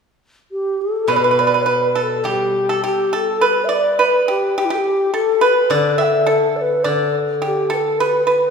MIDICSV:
0, 0, Header, 1, 4, 480
1, 0, Start_track
1, 0, Tempo, 582524
1, 897, Time_signature, 4, 2, 24, 8
1, 3300, Tempo, 570885
1, 7082, End_track
2, 0, Start_track
2, 0, Title_t, "Pipa"
2, 0, Program_c, 0, 105
2, 892, Note_on_c, 0, 71, 58
2, 947, Note_off_c, 0, 71, 0
2, 957, Note_on_c, 0, 71, 41
2, 1013, Note_off_c, 0, 71, 0
2, 1023, Note_on_c, 0, 71, 47
2, 1069, Note_off_c, 0, 71, 0
2, 1079, Note_on_c, 0, 71, 42
2, 1134, Note_off_c, 0, 71, 0
2, 1144, Note_on_c, 0, 71, 47
2, 1202, Note_off_c, 0, 71, 0
2, 1211, Note_on_c, 0, 71, 39
2, 1261, Note_off_c, 0, 71, 0
2, 1270, Note_on_c, 0, 71, 48
2, 1328, Note_off_c, 0, 71, 0
2, 1367, Note_on_c, 0, 71, 59
2, 1599, Note_off_c, 0, 71, 0
2, 1610, Note_on_c, 0, 69, 53
2, 1841, Note_off_c, 0, 69, 0
2, 1853, Note_on_c, 0, 67, 54
2, 2194, Note_off_c, 0, 67, 0
2, 2219, Note_on_c, 0, 69, 53
2, 2333, Note_off_c, 0, 69, 0
2, 2337, Note_on_c, 0, 67, 57
2, 2562, Note_off_c, 0, 67, 0
2, 2577, Note_on_c, 0, 69, 63
2, 2802, Note_off_c, 0, 69, 0
2, 2813, Note_on_c, 0, 71, 67
2, 3035, Note_off_c, 0, 71, 0
2, 3039, Note_on_c, 0, 74, 58
2, 3271, Note_off_c, 0, 74, 0
2, 3288, Note_on_c, 0, 71, 60
2, 3518, Note_off_c, 0, 71, 0
2, 3532, Note_on_c, 0, 67, 57
2, 3760, Note_off_c, 0, 67, 0
2, 3781, Note_on_c, 0, 67, 64
2, 3877, Note_off_c, 0, 67, 0
2, 3887, Note_on_c, 0, 67, 61
2, 4230, Note_off_c, 0, 67, 0
2, 4251, Note_on_c, 0, 69, 61
2, 4478, Note_off_c, 0, 69, 0
2, 4484, Note_on_c, 0, 71, 70
2, 4714, Note_off_c, 0, 71, 0
2, 4730, Note_on_c, 0, 74, 74
2, 4956, Note_off_c, 0, 74, 0
2, 4961, Note_on_c, 0, 76, 65
2, 5190, Note_off_c, 0, 76, 0
2, 5200, Note_on_c, 0, 69, 62
2, 5654, Note_off_c, 0, 69, 0
2, 5687, Note_on_c, 0, 74, 60
2, 5916, Note_off_c, 0, 74, 0
2, 6169, Note_on_c, 0, 67, 57
2, 6395, Note_off_c, 0, 67, 0
2, 6405, Note_on_c, 0, 69, 59
2, 6634, Note_off_c, 0, 69, 0
2, 6662, Note_on_c, 0, 71, 70
2, 6874, Note_off_c, 0, 71, 0
2, 6884, Note_on_c, 0, 71, 53
2, 7082, Note_off_c, 0, 71, 0
2, 7082, End_track
3, 0, Start_track
3, 0, Title_t, "Xiao"
3, 0, Program_c, 1, 77
3, 426, Note_on_c, 1, 67, 64
3, 671, Note_on_c, 1, 69, 61
3, 684, Note_off_c, 1, 67, 0
3, 906, Note_off_c, 1, 69, 0
3, 919, Note_on_c, 1, 74, 61
3, 960, Note_on_c, 1, 71, 66
3, 968, Note_off_c, 1, 74, 0
3, 1157, Note_on_c, 1, 74, 69
3, 1170, Note_off_c, 1, 71, 0
3, 1378, Note_on_c, 1, 71, 65
3, 1391, Note_off_c, 1, 74, 0
3, 1635, Note_off_c, 1, 71, 0
3, 1635, Note_on_c, 1, 71, 55
3, 1670, Note_on_c, 1, 69, 60
3, 1678, Note_off_c, 1, 71, 0
3, 1859, Note_off_c, 1, 69, 0
3, 1864, Note_on_c, 1, 69, 60
3, 1901, Note_on_c, 1, 67, 65
3, 1909, Note_off_c, 1, 69, 0
3, 2311, Note_off_c, 1, 67, 0
3, 2356, Note_on_c, 1, 67, 68
3, 2598, Note_on_c, 1, 69, 70
3, 2610, Note_off_c, 1, 67, 0
3, 2847, Note_on_c, 1, 71, 79
3, 2860, Note_off_c, 1, 69, 0
3, 3004, Note_on_c, 1, 76, 55
3, 3017, Note_off_c, 1, 71, 0
3, 3044, Note_off_c, 1, 76, 0
3, 3044, Note_on_c, 1, 76, 65
3, 3079, Note_on_c, 1, 74, 71
3, 3087, Note_off_c, 1, 76, 0
3, 3308, Note_off_c, 1, 74, 0
3, 3308, Note_on_c, 1, 74, 70
3, 3341, Note_on_c, 1, 71, 76
3, 3350, Note_off_c, 1, 74, 0
3, 3533, Note_off_c, 1, 71, 0
3, 3538, Note_on_c, 1, 67, 71
3, 3763, Note_off_c, 1, 67, 0
3, 3792, Note_on_c, 1, 67, 69
3, 3842, Note_on_c, 1, 64, 66
3, 3854, Note_off_c, 1, 67, 0
3, 3921, Note_on_c, 1, 69, 73
3, 3933, Note_off_c, 1, 64, 0
3, 3952, Note_on_c, 1, 67, 79
3, 3961, Note_off_c, 1, 69, 0
3, 4252, Note_off_c, 1, 67, 0
3, 4257, Note_on_c, 1, 69, 79
3, 4512, Note_on_c, 1, 71, 78
3, 4525, Note_off_c, 1, 69, 0
3, 4744, Note_on_c, 1, 74, 82
3, 4757, Note_off_c, 1, 71, 0
3, 4976, Note_off_c, 1, 74, 0
3, 4981, Note_on_c, 1, 79, 71
3, 5010, Note_on_c, 1, 76, 77
3, 5019, Note_off_c, 1, 79, 0
3, 5217, Note_on_c, 1, 69, 74
3, 5230, Note_off_c, 1, 76, 0
3, 5452, Note_on_c, 1, 74, 68
3, 5465, Note_off_c, 1, 69, 0
3, 5492, Note_on_c, 1, 71, 74
3, 5500, Note_off_c, 1, 74, 0
3, 5683, Note_on_c, 1, 74, 82
3, 5695, Note_off_c, 1, 71, 0
3, 5931, Note_off_c, 1, 74, 0
3, 6194, Note_on_c, 1, 69, 60
3, 6222, Note_on_c, 1, 67, 65
3, 6230, Note_off_c, 1, 69, 0
3, 6409, Note_off_c, 1, 67, 0
3, 6430, Note_on_c, 1, 71, 62
3, 6469, Note_on_c, 1, 69, 68
3, 6477, Note_off_c, 1, 71, 0
3, 6648, Note_on_c, 1, 71, 63
3, 6660, Note_off_c, 1, 69, 0
3, 6875, Note_off_c, 1, 71, 0
3, 6880, Note_on_c, 1, 71, 63
3, 7082, Note_off_c, 1, 71, 0
3, 7082, End_track
4, 0, Start_track
4, 0, Title_t, "Guzheng"
4, 0, Program_c, 2, 107
4, 886, Note_on_c, 2, 47, 48
4, 1844, Note_on_c, 2, 55, 46
4, 2339, Note_off_c, 2, 47, 0
4, 3288, Note_off_c, 2, 55, 0
4, 4724, Note_on_c, 2, 50, 56
4, 5678, Note_off_c, 2, 50, 0
4, 5688, Note_on_c, 2, 50, 50
4, 7082, Note_off_c, 2, 50, 0
4, 7082, End_track
0, 0, End_of_file